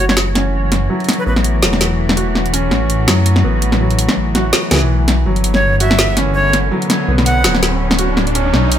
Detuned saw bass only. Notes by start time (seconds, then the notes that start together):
Already playing: F#1
1.26 A1
1.63 E1
2.72 A1
3.08 F#2
3.44 A1
4.17 A1
4.71 C#2
4.82 B1
5.26 G1
7.08 B1
7.44 D1
8.54 B1